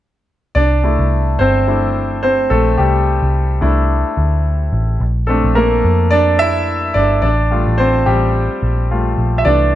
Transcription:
0.55 picked electric bass C2, grand piano D4 D5
0.84 grand piano A3 D4 E4
0.99 picked electric bass C2
1.39 picked electric bass G1, grand piano C4 C5
1.67 grand piano A3 D4 E4
2.23 grand piano C4 C5
2.50 picked electric bass A#1, grand piano A3 A4
2.78 picked electric bass C2, grand piano G3 G4
3.22 picked electric bass C2
3.61 picked electric bass C2, grand piano A3 D4 E4
4.17 picked electric bass D2
4.73 picked electric bass A1
5.00 picked electric bass A#1
5.27 grand piano A3 C4 D4 A4
5.44 picked electric bass A#1
5.55 grand piano A#3 A#4
5.84 picked electric bass F2
6.11 grand piano D4 D5
6.39 grand piano E4 E5
6.94 picked electric bass G1, grand piano D4 D5
7.22 picked electric bass A1, grand piano D4 D5
7.51 grand piano G3 A3 F4
7.67 picked electric bass A1
7.78 grand piano C4 C5
8.06 picked electric bass A1, grand piano G3 G4
8.63 picked electric bass A#1
8.91 grand piano G3 A3 F4
9.18 picked electric bass A#1
9.38 grand piano E5
9.45 picked electric bass C2, grand piano E3 A3 D4 D5

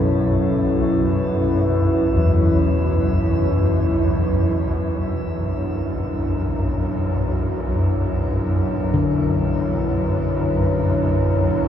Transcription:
Already playing: synth drone B1 F#2, analog synth pad B2 C#4 E4 A4 B4
2.17 kettle gongs E2
4.57 synth drone B1, analog synth pad D4
4.61 synth drone F#2
8.16 analog synth pad C#5
8.94 kettle gongs D3

